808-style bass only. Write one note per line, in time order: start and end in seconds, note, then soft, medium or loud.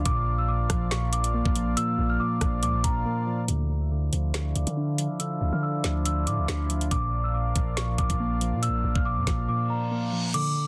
0.06 0.67 A#1 loud
0.70 1.42 A#1 loud
1.45 1.76 A#1 loud
1.98 2.19 A#1 loud
2.41 2.64 A#1 loud
2.63 2.76 C#2 loud
2.74 2.84 A#1 loud
2.84 3.05 A#1 loud
3.48 4.10 D2 loud
4.13 4.54 D2 loud
4.56 4.66 D2 loud
4.67 5.08 D3 loud
5.41 5.52 D2 loud
5.53 5.83 D3 loud
5.84 6.28 D2 loud
6.27 6.40 A2 loud
6.38 6.48 D2 loud
6.48 6.90 D2 loud
6.91 7.53 A#1 loud
7.56 7.97 A#1 loud
7.98 8.09 A#1 loud
8.10 8.54 A#1 loud
8.53 8.70 A#2 loud
8.68 8.83 A#1 loud
8.84 8.95 A#1 loud
8.96 9.18 A#1 loud
9.17 9.26 F2 loud
9.27 9.48 A#1 loud